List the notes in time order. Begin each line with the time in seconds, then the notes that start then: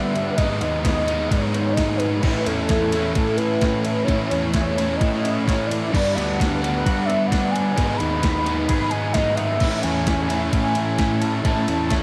Already playing: G2 D3 G3 B3 D4 G4 B4 E5 F#5
0.14 G3 B3 D4, ride
0.37 G#2 D#3 G#3 B3 D#4 D#5 G#5, kick, ride
0.61 D#2 G#3 B3 D#4 D#5, ride
0.85 D#3 G#3 B3 D#4, kick, snare, ride
1.08 G#2 D#3 G#3 B3 D#4, ride
1.28 G#2 D#3 C#5, kick, ride
1.33 G#3 B3 D#4
1.54 G#3 B3 D#4, ride
1.73 D#3 G#3 D#5, kick, ride
1.78 B3 D#4, snare
1.97 D#4 B4, ride
2.02 G#3 B3
2.23 A2 E3 A3 C#4 E4 A4, kick, crash
2.46 E2 A3 C#4 E4 A4, ride
2.69 E3 A3 C#4 E4, kick, snare, ride
2.92 A2 E3 A3 C#4 E4, ride
3.14 A2 E3 A3 C#4 A4, kick, ride
3.18 E4
3.28 snare
3.36 E4 B4, ride
3.40 A3 C#4
3.61 E3 A3 C#4 E4, kick, snare, ride
3.85 A3 C#4 E4, ride
4.04 A2 C#5
4.08 A2 E3 A3 C#4 E4 B4, kick, ride
4.30 E2 A3 C#4 E4 C#5, ride
4.54 E3 A3 C#4 E4, kick, snare, ride
4.77 A2 E3 A3 C#4 E4, ride
4.96 D#5
5.00 A2 E3 A3 C#4 E4, kick, ride
5.14 snare
5.23 A3 C#4 E4, ride
5.43 E3 A3 C#5
5.48 C#4 E4, kick, snare, ride
5.67 C#4 E4 D5
5.71 A3, ride
5.91 G2 D3 G3 B3 D4 D5 F#5, kick, crash
6.15 D2 G3 B3 D4 F#5, ride
6.39 D3 G3 B3 D4, kick, snare, ride
6.61 G3 B3 D4, ride
6.65 G2 D3
6.82 G2 F#5
6.86 D3 G3 B3 D4 F#4, kick, ride
7.05 B3 D4 E5
7.10 G3, ride
7.27 F#5
7.31 D3 G3 B3 D4, kick, snare, ride
7.51 D4 G#5
7.55 F#3 G3 B3, ride
7.76 G#2 D#3 G#3 B3 D#4, kick, ride
7.96 D#4 B5, ride
8.00 D#2 G#3 B3
8.21 D#3 G#3 B3 D#4, kick, snare, ride
8.46 G#2 D#3 G#3 B3 D#4, ride
8.68 G#2 D#3 G#3 B3 D#4 G#4 B5, kick, ride
8.81 snare
8.90 B3 D#4 G#5, ride
8.94 G#3
9.13 D#3 G#3 B3 D#5, kick, snare, ride
9.17 D#4
9.35 D#4 E5, ride
9.39 D#3 G#3 B3
9.59 A2 E3 A3 C#4 E4 A4, kick, crash
9.82 E2 A3 C#4 E4 G#5, ride
10.07 E3 A3 C#4 E4, kick, snare, ride
10.29 E3 A3 C#4 E4, ride
10.33 A2
10.51 A2 E3 A3 C#4 E4 G#5, kick, ride
10.75 A3 C#4 E4, ride
10.98 E3 A3 C#4 E4, kick, snare, ride
11.21 E3 A3 C#4 E4 A5, ride
11.44 A2 E3 A3 C#4 E4, kick, ride
11.68 E2 A3 C#4 E4, ride
11.90 E3 A3 C#4 E4, kick, snare, ride